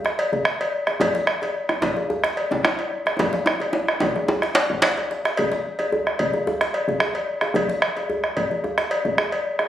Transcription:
0.05 bombo rim medium
0.05 djembe slap medium
0.19 cowbell medium
0.33 bombo low medium
0.33 djembe tone medium
0.45 bombo rim medium
0.60 cowbell medium
0.60 djembe slap soft
0.87 bombo rim medium
0.87 djembe tone medium
1.00 bombo low loud
1.00 cowbell medium
1.00 djembe tone loud
1.00 djembe bass medium
1.15 djembe slap medium
1.27 bombo rim loud
1.42 cowbell medium
1.42 djembe tone medium
1.69 bombo rim medium
1.69 djembe tone medium
1.82 bombo rim soft
1.82 bombo low medium
1.82 cowbell soft
1.82 djembe tone loud
1.97 djembe tone medium
2.10 djembe slap soft
2.10 djembe bass medium
2.24 bombo rim medium
2.24 djembe slap medium
2.37 cowbell soft
2.51 bombo rim soft
2.51 bombo low medium
2.51 djembe tone medium
2.65 bombo rim loud
2.65 djembe tone loud
2.79 cowbell medium
2.79 djembe slap soft
3.06 bombo rim medium
3.06 djembe tone medium
3.19 bombo low loud
3.19 cowbell medium
3.19 djembe slap soft
3.19 djembe tone loud
3.19 djembe bass medium
3.33 bombo rim soft
3.33 djembe slap medium
3.46 bombo rim loud
3.46 djembe slap soft
3.46 djembe tone loud
3.60 cowbell soft
3.60 djembe slap soft
3.60 djembe tone medium
3.73 djembe slap soft
3.73 djembe tone loud
3.88 bombo rim medium
3.88 djembe slap soft
4.00 bombo rim soft
4.00 bombo low loud
4.00 cowbell soft
4.00 djembe slap soft
4.00 djembe tone loud
4.16 bombo rim soft
4.16 djembe tone medium
4.28 bombo rim soft
4.28 djembe tone loud
4.28 djembe bass medium
4.42 bombo rim medium
4.42 djembe slap medium
4.55 cowbell medium
4.55 djembe slap loud
4.55 djembe slap soft
4.70 bombo rim soft
4.70 bombo low medium
4.70 djembe bass soft
4.82 bombo rim loud
4.82 djembe slap loud
4.82 djembe bass soft
4.97 bombo rim soft
4.97 cowbell medium
4.97 djembe bass medium
5.11 djembe slap medium
5.25 bombo rim medium
5.25 djembe slap medium
5.37 bombo low medium
5.37 cowbell medium
5.37 djembe bass medium
5.52 bombo rim soft
5.52 djembe slap medium
5.79 bombo rim soft
5.79 cowbell soft
5.79 djembe tone medium
5.92 djembe bass medium
6.07 bombo rim medium
6.07 djembe slap soft
6.19 bombo rim soft
6.19 bombo low medium
6.19 cowbell medium
6.19 djembe slap soft
6.34 djembe tone medium
6.47 bombo rim soft
6.47 djembe slap soft
6.47 djembe bass medium
6.61 bombo rim medium
6.61 djembe slap medium
6.74 cowbell soft
6.88 bombo low medium
6.88 djembe slap soft
6.88 djembe tone medium
7.00 bombo rim loud
7.00 djembe bass medium
7.15 cowbell medium
7.41 bombo rim medium
7.41 djembe tone medium
7.54 bombo low loud
7.54 cowbell medium
7.54 djembe bass medium
7.68 bombo rim soft
7.68 djembe slap medium
7.82 bombo rim loud
7.96 bombo rim soft
7.96 cowbell soft
7.96 djembe tone medium
8.10 djembe bass medium
8.24 bombo rim medium
8.24 djembe slap soft
8.37 bombo rim soft
8.37 bombo low medium
8.37 cowbell medium
8.37 djembe slap soft
8.51 djembe tone medium
8.64 bombo rim soft
8.64 djembe slap soft
8.64 djembe bass medium
8.78 bombo rim medium
8.78 djembe slap medium
8.91 cowbell medium
9.05 bombo low medium
9.05 djembe slap soft
9.05 djembe tone medium
9.18 bombo rim loud
9.18 djembe bass medium
9.32 cowbell medium
9.59 bombo rim medium
9.59 djembe tone medium

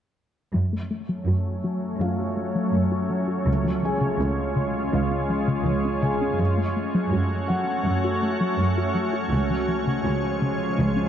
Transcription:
0.54 1.16 F#2 soft
0.54 0.65 F#3 medium
0.54 3.43 F#3 medium
0.54 3.43 A3 soft
0.54 6.36 C#4 medium
0.54 6.36 C#5 soft
0.73 0.84 A3 soft
0.91 1.02 A3 soft
1.09 1.20 F#3 medium
1.27 1.89 F#2 soft
1.27 1.38 F#4 medium
1.64 1.75 F#3 medium
2.00 2.62 F#2 soft
2.00 2.12 F#3 medium
2.00 4.16 F4 soft
2.00 4.16 F5 soft
2.19 2.30 F#4 soft
2.37 2.48 A3 soft
2.55 2.66 F#3 medium
2.73 3.36 F#2 soft
2.73 2.84 A3 soft
2.92 3.03 F#4 soft
3.10 3.21 F#3 medium
3.28 3.39 F#4 soft
3.46 4.09 C#2 soft
3.46 3.57 C#3 medium
3.46 6.39 G#3 soft
3.46 6.40 F4 soft
3.64 3.76 F3 medium
3.83 3.94 F3 soft
3.83 6.00 G#4 soft
3.83 6.00 G#5 soft
4.01 4.12 C#3 medium
4.19 4.82 C#2 soft
4.19 4.31 C#4 soft
4.56 4.67 C#3 medium
4.93 5.55 C#2 soft
4.93 5.04 C#3 medium
4.93 7.09 F5 soft
5.11 5.22 C#4 soft
5.30 5.41 F3 soft
5.48 5.59 C#3 medium
5.66 6.28 C#2 medium
5.66 5.78 F3 soft
5.85 5.96 C#4 soft
6.02 6.14 C#3 medium
6.02 8.18 G#4 soft
6.02 8.18 G#5 soft
6.21 6.32 C#4 soft
6.39 7.01 F#2 medium
6.39 6.50 F#3 medium
6.39 9.33 A3 medium
6.39 11.09 C#4 soft
6.39 9.33 F#4 medium
6.39 11.09 C#5 medium
6.58 6.69 A3 medium
6.76 6.87 A3 soft
6.95 7.06 F#3 medium
7.12 7.74 F#2 medium
7.12 7.24 F#4 medium
7.48 7.61 F#3 medium
7.48 9.64 F#5 soft
7.86 8.48 F#2 medium
7.86 7.97 F#3 medium
8.04 8.15 F#4 soft
8.23 8.34 A3 soft
8.41 8.52 F#3 medium
8.59 9.21 F#2 medium
8.59 8.70 A3 soft
8.78 8.89 F#4 medium
8.95 9.06 F#3 medium
9.13 9.25 F#4 soft
9.32 9.94 C#2 soft
9.32 9.43 C#3 medium
9.32 11.09 F3 medium
9.32 11.09 G#3 medium
9.50 9.61 F3 medium
9.68 9.79 F3 soft
9.87 9.98 C#3 medium
10.05 10.67 C#2 medium
10.05 10.16 C#4 soft
10.42 10.53 C#3 medium
10.79 11.09 C#2 soft
10.79 10.90 C#3 medium
10.96 11.07 C#4 soft

